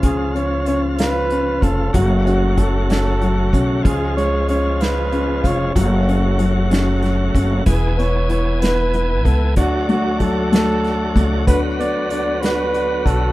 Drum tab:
HH |xxxxxx|xxxxxx|xxxxxx|xxxxxx|
SD |---o--|---o--|---o--|---oo-|
BD |o----o|o-o--o|o----o|o----o|

HH |xxxxxx|xxxxxx|xxxxxx|
SD |---o--|---oo-|---o--|
BD |o----o|o-o--o|o----o|